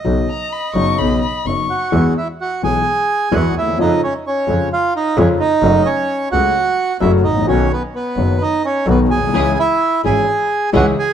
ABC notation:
X:1
M:4/4
L:1/16
Q:1/4=130
K:B
V:1 name="Violin"
z2 a2 b2 c'2 b2 b2 c'4 | [K:E] z16 | z16 | z16 |
z16 | z16 |]
V:2 name="Bandoneon"
d12 z2 [Ff]2- | [K:E] [Ff]2 [Ee]2 [Ff]2 [Gg]6 [Ff]2 [Ee]2 | [Dd]2 [Cc]2 [Cc]4 [^E^e]2 [Dd]2 [Cc]2 [Dd]2- | [Dd]2 [Cc]4 [Ff]6 [Ee]2 [Dd]2 |
[Cc]2 [B,B]2 [B,B]4 [Dd]2 [Cc]2 [B,B]2 [Gg]2- | [Gg]2 [Ee]4 [Gg]6 [Ff]2 [Gg]2 |]
V:3 name="String section"
z16 | [K:E] z16 | z16 | z16 |
z16 | [CEG]2 z4 [CEG]2 z4 [CEG]2 z2 |]
V:4 name="Grand piano" clef=bass
[B,,,B,,C,F,B,D]2 z4 [F,,,F,,C,F,B,D]2 [B,,,B,,C,F,B,D]2 z2 [F,,,F,,C,F,B,D]2 z2 | [K:E] [E,,E,G,B,G]2 z4 [B,,,B,,E,G,B,G]2 z4 [E,,E,G,B,G]2 z/2 =D,,/2 ^D,,/2 E,,/2 | [^E,,C,^E,G,^E]2 z4 [E,,C,E,G,E]2 z4 [E,,C,E,G,E]2 z2 | [F,,C,F,A,F]2 z4 [C,,C,F,A,F]2 z4 [F,,C,F,A,F]2 z/2 G,,,/2 A,,,/2 ^A,,,/2 |
[B,,,B,,D,F,B,F]2 z4 [F,,,F,,D,F,B,F]2 z4 [B,,,B,,D,F,B,F]2 z/2 ^A,,,/2 B,,,/2 =C,,/2 | [C,,C,E,G,CG]2 z4 [G,,,G,,E,G,CG]2 z4 [C,,C,E,G,CG]2 z2 |]
V:5 name="Double bass" clef=bass
B,,,2 z4 F,,,2 B,,,2 z2 F,,,2 z2 | [K:E] E,,2 z4 B,,,2 z4 E,,2 D,,2 | ^E,,2 z4 E,,2 z4 E,,2 z2 | F,,,2 z4 C,,2 z4 F,,,2 A,,,2 |
B,,,2 z4 F,,,2 z4 B,,,2 B,,,2 | C,,2 z4 G,,,2 z4 C,,2 z2 |]